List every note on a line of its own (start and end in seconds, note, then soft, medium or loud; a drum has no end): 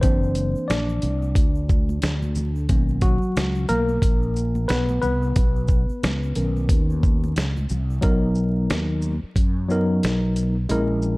0.01 0.53 F#1 medium
0.01 0.98 E3 medium
0.01 0.99 A#3 medium
0.01 0.66 C4 medium
0.01 0.69 D4 medium
0.01 0.71 C5 medium
0.01 kick loud
0.01 closed hi-hat medium
0.01 shaker medium
0.23 shaker soft
0.35 closed hi-hat soft
0.35 shaker soft
0.37 shaker soft
0.55 muted fretless electric bass stroke soft
0.55 shaker soft
0.68 1.01 A#1 medium
0.68 2.32 D4 medium
0.68 2.31 D5 medium
0.68 snare loud
0.68 closed hi-hat medium
0.68 shaker medium
0.89 shaker soft
1.02 1.34 C2 medium
1.02 closed hi-hat soft
1.02 high conga soft
1.02 low conga medium
1.02 shaker medium
1.02 shaker soft
1.22 high conga soft
1.22 shaker soft
1.35 1.99 D2 medium
1.35 kick loud
1.35 closed hi-hat medium
1.35 shaker medium
1.55 shaker soft
1.69 kick medium
1.69 shaker medium
1.69 shaker soft
1.89 high conga medium
1.89 shaker soft
2.02 2.66 D2 medium
2.02 snare loud
2.02 closed hi-hat medium
2.02 shaker medium
2.23 high conga medium
2.23 shaker soft
2.35 low conga medium
2.35 shaker soft
2.56 shaker soft
2.69 3.19 B1 medium
2.69 3.15 D#3 medium
2.69 3.16 A#3 medium
2.69 3.16 C#4 medium
2.69 kick loud
2.69 closed hi-hat medium
2.69 shaker medium
2.89 shaker soft
3.01 3.66 F#3 medium
3.01 3.65 F#4 medium
3.01 kick medium
3.01 closed hi-hat soft
3.01 shaker soft
3.03 shaker soft
3.22 muted fretless electric bass stroke soft
3.22 shaker soft
3.36 3.68 C#2 medium
3.36 snare loud
3.36 closed hi-hat medium
3.36 shaker medium
3.55 shaker soft
3.69 4.01 B1 medium
3.69 4.66 A#3 medium
3.69 4.72 A#4 loud
3.69 closed hi-hat medium
3.69 high conga soft
3.69 low conga medium
3.69 shaker medium
3.69 shaker soft
3.89 high conga soft
3.89 shaker soft
4.02 4.66 A#1 medium
4.02 kick loud
4.02 closed hi-hat medium
4.02 shaker medium
4.22 shaker soft
4.36 shaker soft
4.55 high conga medium
4.55 shaker soft
4.68 5.01 B1 medium
4.68 5.01 B3 medium
4.68 5.00 B4 loud
4.68 snare loud
4.68 closed hi-hat medium
4.68 shaker medium
4.89 high conga medium
4.89 shaker soft
5.02 5.35 C2 medium
5.02 7.32 B3 medium
5.02 7.32 B4 medium
5.02 low conga medium
5.02 shaker soft
5.23 shaker soft
5.36 5.86 B1 loud
5.36 kick loud
5.36 closed hi-hat medium
5.36 shaker medium
5.56 shaker soft
5.68 kick medium
5.68 shaker soft
5.70 shaker soft
5.89 muted fretless electric bass stroke medium
5.89 shaker soft
6.03 6.35 C#2 medium
6.03 snare loud
6.03 closed hi-hat medium
6.03 low conga medium
6.03 shaker medium
6.23 shaker soft
6.35 6.68 B1 medium
6.35 7.32 D#3 medium
6.35 7.33 C#4 medium
6.35 7.32 A#4 medium
6.35 closed hi-hat medium
6.35 high conga soft
6.35 low conga medium
6.35 shaker medium
6.38 shaker soft
6.57 high conga soft
6.57 shaker soft
6.69 7.33 D#2 medium
6.69 kick medium
6.69 closed hi-hat medium
6.69 shaker medium
6.90 shaker soft
7.03 kick medium
7.03 shaker soft
7.24 high conga medium
7.24 shaker soft
7.36 7.68 C#2 medium
7.36 snare loud
7.36 closed hi-hat medium
7.36 shaker medium
7.57 high conga medium
7.57 shaker soft
7.69 8.01 C2 medium
7.69 low conga medium
7.69 shaker soft
7.71 shaker soft
7.90 shaker soft
8.01 8.66 B1 medium
8.01 9.13 F#3 medium
8.01 9.14 B3 medium
8.01 9.14 D#4 medium
8.01 9.14 A#4 loud
8.01 kick loud
8.01 closed hi-hat medium
8.35 shaker soft
8.70 9.20 D#2 medium
8.70 snare loud
8.70 closed hi-hat medium
9.02 shaker soft
9.23 muted fretless electric bass stroke soft
9.36 9.99 F#2 medium
9.36 kick medium
9.36 closed hi-hat medium
9.69 10.54 F#3 medium
9.69 10.54 B3 medium
9.69 10.55 D#4 medium
9.69 10.55 A#4 loud
9.69 shaker soft
10.03 10.67 B1 medium
10.03 snare loud
10.03 closed hi-hat medium
10.36 closed hi-hat soft
10.36 shaker soft
10.69 11.18 A#1 medium
10.69 11.18 G#3 medium
10.69 11.18 C#4 medium
10.69 11.18 E4 medium
10.69 11.18 A#4 loud
10.69 closed hi-hat medium
11.02 shaker soft